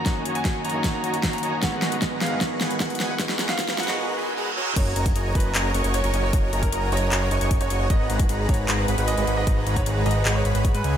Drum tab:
CC |--------------------------------|--------------------------------|--------------------------------|x-------------------------------|
HH |x---x-x-x---xx--x---x-x-x-xxx---|x---x-x-x---xx--x---x-x-x-xxx---|x---x-x-x---xx------------------|x---x-x-x---xx--x---x-x-x-x-x---|
CP |--------------------------------|--------------------------------|--------------------------------|----------------x---------------|
SD |o-------o-------o-------o-------|o---o---o---o---o---o---o---o---|o-o-o-o-o-o-o-o-----------------|--------------------------------|
BD |o-------o-------o-------o-------|o-------o-------o-------o-------|o-------o-----------------------|o-----o-----o-------------------|

CC |--------------------------------|--------------------------------|--------------------------------|
HH |x---x-x-x---xx--x---x-x-x-x-x---|x---x-x-x---xx--x---x-x-x-x-x---|x---x-x-x---xx--x---x-x-x-x-x---|
CP |----------------x---------------|----------------x---------------|----------------x---------------|
SD |--------------------------------|--------------------------------|--------------------------------|
BD |o-----o-----------------o-------|o-----o-----o-------------------|o-----o-----------------o-------|